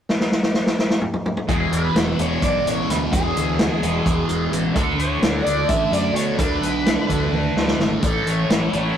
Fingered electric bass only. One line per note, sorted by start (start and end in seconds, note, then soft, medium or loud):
1.49 1.66 E1 medium
1.71 1.88 E1 medium
1.95 2.12 E1 medium
2.19 2.36 E1 medium
2.43 2.60 B1 medium
2.66 2.83 A1 medium
2.88 3.06 D2 medium
3.13 3.30 E1 medium
3.35 3.70 D2 medium
3.82 4.00 E1 medium
4.06 4.23 E1 medium
4.28 4.46 E1 medium
4.52 4.69 A1 medium
4.76 4.93 D2 medium
4.98 5.15 D2 medium
5.21 5.39 D2 medium
5.45 5.63 D2 medium
5.69 5.86 A1 medium
5.91 6.09 F#2 medium
6.14 6.32 B2 medium
6.39 6.56 D2 medium
6.61 6.96 B1 medium
7.10 7.27 D2 medium
7.32 7.49 D2 medium
7.55 7.73 D2 medium
7.78 7.96 G#1 medium
8.03 8.20 A1 medium
8.27 8.44 A1 medium
8.50 8.67 A1 medium
8.73 8.90 A1 medium